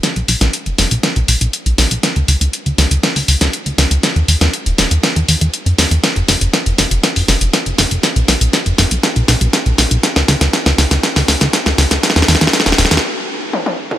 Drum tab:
HH |x-x-o-x-x-x-o-x-x-x-o-x-x-x-o-x-|x-x-o-x-x-x-o-x-x-o-o-x-x-x-o-x-|x-x-o-x-x-x-o-x-x-x-o-x-x-x-o-x-|x-x-o-x-x-x-o-x-x-o-o-x-x-x-o-x-|
SD |o-----o-----o---o-----------o---|o-----------o---o-----o-----o---|o-----o-----o---o-----------o---|o---o---o---o---o---o---o---o---|
T1 |--------------------------------|--------------------------------|--------------------------------|--------------------------------|
T2 |--------------------------------|--------------------------------|--------------------------------|--------------------------------|

HH |x-x-o-x-x-x-o-x-x-x-o-x-x-x-o-x-|x-x-o-x-x-x-o-x-x-o-o-x-x-x-o-x-|x-x-o-x-x-x-o-x-----------------|
SD |o---o---o---o---o---o---o---o---|o-o-o-o-o-o-o-o-o-o-o-o-o-o-o-o-|oooooooooooooooo----------------|
T1 |--------------------------------|--------------------------------|------------------------o-o-----|
T2 |--------------------------------|--------------------------------|------------------------------o-|